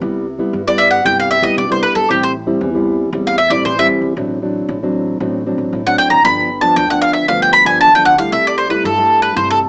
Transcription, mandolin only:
0.68 0.80 D5 medium
0.78 0.90 E5 medium
0.91 1.04 F#5 medium
1.06 1.18 G5 medium
1.20 1.30 F5 medium
1.31 1.44 E5 medium
1.43 1.56 D#5 medium
1.58 1.70 D5 medium
1.72 1.82 C5 medium
1.83 1.95 B4 medium
1.95 2.08 A4 medium
2.11 2.22 G4 medium
2.23 2.31 C5 medium
3.27 3.37 F5 medium
3.38 3.51 E5 medium
3.50 3.64 D5 medium
3.65 3.77 C5 medium
3.79 3.86 E5 medium
5.86 5.98 F#5 medium
5.98 6.10 G5 medium
6.10 6.23 A#5 medium
6.25 6.61 B5 medium
6.61 6.75 A5 medium
6.76 6.89 G5 medium
6.90 7.01 F#5 medium
7.02 7.13 F5 medium
7.13 7.27 E5 medium
7.28 7.41 F5 medium
7.42 7.53 G5 medium
7.53 7.66 B5 loud
7.66 7.79 G#5 medium
7.81 7.93 A5 medium
7.95 8.05 G5 medium
8.05 8.18 F#5 medium
8.18 8.31 F5 medium
8.32 8.45 E5 medium
8.47 8.57 D5 medium
8.58 8.70 C5 medium
8.70 8.83 B4 medium
8.85 9.21 A4 medium
9.22 9.35 B4 medium
9.37 9.49 C5 medium
9.51 9.58 A4 medium

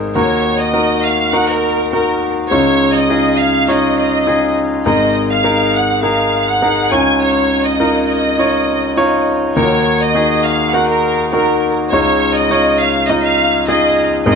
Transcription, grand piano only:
0.00 0.11 G#1 medium
0.00 0.11 G#2 medium
0.00 0.16 D#4 medium
0.00 0.17 G#4 medium
0.00 0.15 A#4 medium
0.00 0.17 C5 medium
0.15 2.46 D#2 medium
0.15 2.46 D#3 medium
0.15 0.68 D#4 medium
0.15 0.68 F#4 medium
0.15 0.68 A#4 medium
0.73 1.27 D#4 medium
0.73 1.27 F#4 medium
0.73 1.27 A#4 medium
1.33 1.86 D#4 medium
1.33 1.86 F#4 medium
1.33 1.86 A#4 medium
1.93 2.45 D#4 medium
1.93 2.45 F#4 medium
1.93 2.46 A#4 medium
2.51 4.82 C#2 medium
2.51 4.82 C#3 medium
2.51 3.04 D#4 medium
2.51 3.04 F4 medium
2.51 3.04 C#5 medium
3.09 3.62 D#4 medium
3.09 3.63 F4 medium
3.09 3.63 G#4 medium
3.68 4.21 D#4 medium
3.68 4.21 F4 medium
3.68 4.21 C#5 medium
4.27 4.80 D#4 medium
4.27 4.80 F4 medium
4.27 4.80 G#4 medium
4.86 6.88 G#1 medium
4.86 6.88 G#2 medium
4.86 5.39 D#4 medium
4.86 5.39 G#4 medium
4.86 5.39 A#4 medium
5.44 5.97 D#4 medium
5.44 5.97 G#4 medium
5.44 5.98 A#4 medium
6.03 6.56 D#4 medium
6.03 6.56 G#4 medium
6.03 6.56 A#4 medium
6.62 6.90 D#4 medium
6.62 6.91 G#4 medium
6.62 6.91 A#4 medium
6.91 9.23 C#2 medium
6.91 9.23 C#3 medium
6.91 7.72 D#4 medium
6.91 7.72 F4 medium
6.91 7.71 C#5 medium
7.80 8.33 D#4 medium
7.80 8.33 F4 medium
7.80 8.33 A#4 medium
8.39 8.92 D#4 medium
8.39 8.92 F4 medium
8.39 8.92 C#5 medium
8.97 9.51 D#4 medium
8.97 9.50 F4 medium
8.97 9.51 C#5 medium
9.56 11.87 D#2 medium
9.56 11.88 D#3 medium
9.56 10.10 D#4 medium
9.56 9.63 F4 soft
9.56 10.10 A#4 medium
9.62 10.13 F#4 medium
10.15 10.68 D#4 medium
10.15 10.68 F#4 medium
10.15 10.68 G#4 medium
10.73 11.27 D#4 medium
10.73 11.27 F#4 medium
10.73 11.27 A#4 medium
11.33 11.86 D#4 medium
11.33 11.86 F#4 medium
11.33 11.86 A#4 medium
11.92 14.23 C#2 medium
11.92 14.23 C#3 medium
11.92 12.45 D#4 medium
11.92 12.46 F4 medium
11.92 12.46 C#5 medium
12.50 13.04 D#4 medium
12.50 13.04 F4 medium
12.50 13.04 C#5 medium
13.09 13.63 D#4 medium
13.09 13.63 F4 medium
13.09 13.63 D#5 medium
13.68 14.21 D#4 medium
13.68 14.21 F4 medium
13.68 14.21 G#4 medium
14.26 14.35 G#1 medium
14.26 14.35 G#2 medium
14.26 14.35 D#4 medium
14.26 14.35 G#4 medium
14.26 14.35 A#4 medium

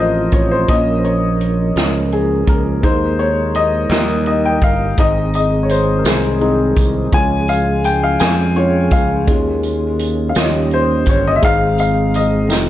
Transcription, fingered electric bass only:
0.00 0.29 A1 medium
0.32 0.66 A1 medium
0.69 1.72 A#1 medium
1.76 2.44 C#2 medium
2.47 2.80 C#2 medium
2.83 3.87 D#2 medium
3.90 4.58 D#2 loud
4.62 4.95 G1 medium
4.98 6.01 G#1 medium
6.05 6.73 C2 medium
6.77 7.10 C2 medium
7.13 8.16 C#2 medium
8.21 8.88 F2 medium
8.91 9.28 C#2 medium
9.28 10.31 D#2 medium
10.36 11.04 D#2 medium
11.06 11.40 G1 loud
11.43 12.51 G#1 medium
12.51 12.70 F1 medium

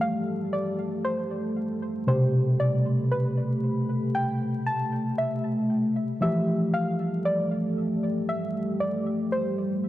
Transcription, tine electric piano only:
0.00 2.06 E3 medium
0.00 2.05 F3 medium
0.00 2.05 A3 medium
0.00 2.06 G4 medium
2.07 6.19 B2 medium
2.07 6.19 C3 medium
2.07 6.19 A3 medium
2.07 6.20 G4 medium
6.21 9.89 E3 medium
6.21 9.89 F3 medium
6.21 9.89 A3 medium
6.21 9.89 G4 medium

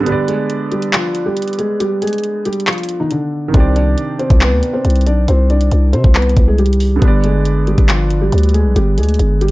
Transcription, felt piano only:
0.06 0.27 G3 medium
0.06 0.27 G4 medium
0.28 0.69 G#3 medium
0.28 0.69 G#4 medium
0.72 0.92 G3 medium
0.72 0.92 G4 medium
0.93 1.24 F3 medium
0.93 1.24 F4 medium
1.26 1.57 G3 medium
1.26 1.57 G4 medium
1.58 1.79 G#3 medium
1.58 1.79 G#4 medium
1.80 2.01 G3 medium
1.80 2.00 G4 medium
2.02 2.43 G#3 medium
2.02 2.43 G#4 medium
2.46 2.66 G3 medium
2.46 2.66 G4 medium
2.67 2.98 F3 medium
2.67 2.98 F4 medium
3.00 3.10 D#3 medium
3.00 3.10 D#4 medium
3.11 3.52 D3 medium
3.11 3.52 D4 medium
3.54 3.75 C4 medium
3.54 3.74 C5 medium
3.76 4.17 D4 medium
3.76 4.17 D5 medium
4.19 4.40 C4 medium
4.19 4.40 C5 medium
4.41 4.72 B3 medium
4.41 4.72 B4 medium
4.73 5.05 C4 medium
4.73 5.04 C5 medium
5.06 5.27 D4 medium
5.06 5.27 D5 medium
5.29 5.49 C4 medium
5.29 5.49 C5 medium
5.50 5.91 D4 medium
5.50 5.91 D5 medium
5.93 6.14 C4 medium
5.93 6.13 C5 medium
6.15 6.46 B3 medium
6.15 6.46 B4 medium
6.48 6.58 G#3 medium
6.48 6.58 G#4 medium
6.59 7.00 G3 medium
6.59 6.99 G4 medium
7.02 7.23 G3 medium
7.02 7.22 G4 medium
7.24 7.65 G#3 medium
7.24 7.65 G#4 medium
7.67 7.88 G3 medium
7.67 7.88 G4 medium
7.89 8.20 F3 medium
7.89 8.19 F4 medium
8.22 8.53 G3 medium
8.22 8.52 G4 medium
8.54 8.75 G#3 medium
8.54 8.74 G#4 medium
8.76 8.97 G3 medium
8.76 8.96 G4 medium
8.98 9.39 G#3 medium
8.98 9.38 G#4 medium
9.41 9.51 G3 medium
9.41 9.51 G4 medium

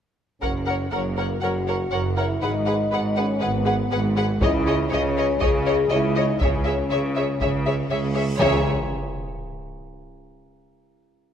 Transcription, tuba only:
0.42 0.87 F#1 soft
0.91 1.36 F#1 soft
1.42 1.86 F#1 soft
1.92 2.36 F#1 soft
2.42 2.86 G#1 soft
2.91 3.36 G#1 soft
3.42 3.86 G#1 medium
3.91 4.36 G#1 medium
4.42 4.86 C#2 medium
4.91 5.35 C#2 medium
5.42 5.85 C#2 medium
5.91 6.28 C#2 medium
6.41 6.85 C#2 medium
6.90 7.35 C#2 medium
7.41 7.85 C#2 soft
7.91 8.34 C#2 soft
8.41 8.61 C#2 medium

